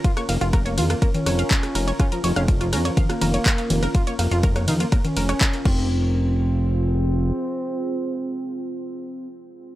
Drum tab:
CC |----------------|----------------|--------------x-|----------------|
RD |x-x-x-x-x-x-x-x-|x-x-x-x-x-x-x-x-|x-x-x-x-x-x-x---|----------------|
HH |xxoxxxoxxxoxxxox|xxoxxxoxxxoxxxox|xxoxxxoxxxoxxx--|----------------|
CP |------------x---|------------x---|------------x---|----------------|
SD |-r--r--r--r--r--|r--r--r--r--r--r|--r--r--r--r----|----------------|
CG |------O--O------|--------O-O---O-|------O--O------|----------------|
BD |o---o---o---o---|o---o---o---o---|o---o---o---o-o-|----------------|

CC |----------------|
RD |----------------|
HH |----------------|
CP |----------------|
SD |----------------|
CG |----------------|
BD |----------------|